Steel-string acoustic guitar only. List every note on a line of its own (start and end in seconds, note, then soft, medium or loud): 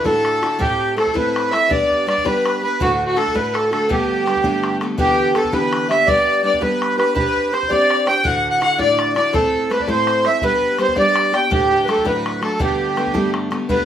0.04 0.43 D2 soft
0.04 0.43 A2 medium
0.04 0.43 D3 medium
0.04 0.42 D4 medium
0.04 0.41 E4 medium
0.04 0.41 F#4 medium
0.42 0.59 D3 soft
0.42 0.59 D4 soft
0.42 0.59 E4 soft
0.42 0.60 F#4 medium
0.59 0.97 A2 medium
0.59 0.95 A3 medium
0.59 0.96 C4 medium
0.59 0.97 E4 medium
0.59 0.98 A4 medium
0.96 1.14 A3 medium
0.96 1.14 C4 medium
0.96 1.13 E4 medium
0.96 1.13 A4 medium
1.14 1.53 A2 soft
1.14 1.53 A3 soft
1.14 1.52 C4 medium
1.14 1.51 E4 medium
1.14 1.50 A4 medium
1.51 1.69 C4 soft
1.51 1.70 E4 soft
1.51 1.70 A4 medium
1.69 2.05 G3 medium
1.69 2.06 B3 medium
1.69 2.08 D4 medium
1.69 2.08 G4 medium
2.07 2.25 G3 medium
2.07 2.25 B3 medium
2.07 2.24 D4 medium
2.07 2.23 G4 medium
2.25 2.63 G3 medium
2.25 2.63 B3 medium
2.25 2.62 D4 medium
2.25 2.60 G4 medium
2.62 2.81 B3 soft
2.62 2.80 D4 soft
2.62 2.80 G4 medium
2.80 3.17 D2 medium
2.80 3.17 A2 medium
2.80 3.16 D3 medium
2.80 3.16 A3 medium
2.80 3.16 D4 medium
2.80 3.17 F#4 medium
3.16 3.34 D3 medium
3.16 3.33 A3 medium
3.16 3.34 D4 medium
3.16 3.33 F#4 medium
3.34 3.72 D2 medium
3.34 3.72 A2 medium
3.34 3.72 D3 medium
3.34 3.70 A3 medium
3.34 3.72 D4 medium
3.34 3.69 F#4 medium
3.71 3.88 D3 medium
3.71 3.89 A3 soft
3.71 3.89 D4 soft
3.71 3.89 F#4 soft
3.89 4.26 G2 medium
3.89 4.44 D3 medium
3.89 4.26 G3 medium
3.89 4.26 A3 medium
3.89 4.26 B3 medium
3.89 4.28 D4 medium
4.26 4.43 G3 medium
4.26 4.43 A3 medium
4.26 4.43 B3 soft
4.26 4.42 D4 medium
4.44 4.82 G2 medium
4.44 4.97 D3 medium
4.44 4.83 G3 medium
4.44 4.80 A3 medium
4.44 4.82 B3 medium
4.44 4.80 D4 medium
4.81 4.98 G3 medium
4.81 4.99 A3 medium
4.81 4.98 B3 medium
4.81 4.98 D4 medium
4.98 5.35 D3 medium
4.98 5.35 E3 medium
4.98 5.35 B3 medium
4.98 5.36 D4 medium
4.98 5.37 G4 medium
5.36 5.52 B3 medium
5.36 5.52 D4 medium
5.36 5.51 G4 medium
5.52 6.06 D3 medium
5.52 5.90 E3 medium
5.52 5.89 B3 medium
5.52 5.89 D4 medium
5.52 5.88 G4 medium
5.88 6.06 B3 soft
5.88 6.07 D4 medium
5.88 6.07 G4 medium
6.06 6.42 G3 medium
6.06 6.43 B3 medium
6.06 6.44 D4 medium
6.06 6.44 G4 medium
6.43 6.61 G3 medium
6.43 6.61 B3 medium
6.43 6.60 D4 medium
6.43 6.59 G4 medium
6.61 6.99 G3 medium
6.61 6.98 B3 medium
6.61 6.98 D4 medium
6.61 6.96 G4 medium
6.98 7.15 B3 soft
6.98 7.14 D4 medium
6.98 7.14 G4 soft
7.14 7.50 C4 medium
7.14 7.51 D4 medium
7.14 7.52 G4 medium
7.52 7.69 C4 medium
7.52 7.69 D4 medium
7.52 7.68 G4 medium
7.52 7.68 C5 medium
7.69 8.07 C4 medium
7.69 8.07 D4 soft
7.69 8.06 G4 medium
7.69 8.05 C5 medium
8.06 8.23 D4 soft
8.06 8.25 G4 soft
8.06 8.24 C5 medium
8.23 8.61 D2 medium
8.23 8.61 A2 medium
8.23 8.59 D3 medium
8.23 8.60 D4 medium
8.23 8.61 E4 medium
8.23 8.61 F#4 medium
8.60 8.78 D3 medium
8.60 8.78 D4 medium
8.60 8.77 E4 medium
8.60 8.77 F#4 medium
8.78 9.16 D2 medium
8.78 9.16 A2 soft
8.78 9.16 D3 medium
8.78 9.15 D4 medium
8.78 9.14 E4 medium
8.78 9.14 F#4 medium
9.15 9.33 D3 soft
9.15 9.33 D4 medium
9.15 9.33 E4 soft
9.15 9.33 F#4 medium
9.33 9.70 A2 medium
9.33 9.69 A3 medium
9.33 9.70 C4 medium
9.33 9.70 E4 medium
9.33 9.71 A4 medium
9.70 9.88 A3 medium
9.70 9.87 C4 medium
9.70 9.87 E4 medium
9.70 9.86 A4 medium
9.87 10.25 A2 medium
9.87 10.25 A3 medium
9.87 10.25 C4 medium
9.87 10.24 E4 medium
9.87 10.23 A4 medium
10.24 10.43 C4 soft
10.24 10.42 E4 soft
10.24 10.42 A4 medium
10.42 10.77 G3 medium
10.42 10.78 B3 medium
10.42 10.79 D4 medium
10.42 10.79 G4 medium
10.78 10.96 G3 medium
10.78 10.96 B3 medium
10.78 10.95 D4 medium
10.78 10.95 G4 medium
10.96 11.34 G3 medium
10.96 11.34 B3 medium
10.96 11.33 D4 medium
10.96 11.31 G4 medium
11.32 11.51 B3 soft
11.32 11.50 D4 soft
11.32 11.50 G4 medium
11.50 11.87 D2 medium
11.50 11.88 A2 medium
11.50 11.88 A3 medium
11.50 11.87 D4 medium
11.87 12.04 F#3 medium
11.87 12.03 A3 medium
11.87 12.04 D4 medium
11.87 12.03 F#4 medium
12.05 12.43 D2 soft
12.05 12.42 A2 medium
12.05 12.42 F#3 medium
12.05 12.42 A3 medium
12.05 12.42 D4 medium
12.05 12.40 F#4 medium
12.41 12.59 F#3 soft
12.41 12.60 A3 medium
12.41 12.59 D4 soft
12.41 12.59 F#4 medium
12.59 12.96 G2 medium
12.59 13.15 D3 medium
12.59 12.95 G3 medium
12.59 12.97 A3 medium
12.59 12.96 B3 medium
12.59 12.98 D4 medium
12.96 13.13 G3 soft
12.96 13.13 A3 medium
12.96 13.13 B3 medium
12.96 13.12 D4 medium
13.13 13.52 G2 soft
13.13 13.69 D3 medium
13.13 13.51 G3 medium
13.13 13.51 A3 medium
13.13 13.51 B3 medium
13.13 13.50 D4 medium
13.51 13.68 G3 soft
13.51 13.69 A3 soft
13.51 13.69 B3 medium
13.51 13.68 D4 medium
13.69 13.85 G2 medium
13.69 13.85 D3 medium
13.69 13.85 G3 medium
13.69 13.85 A3 medium
13.69 13.85 B3 medium
13.69 13.85 D4 medium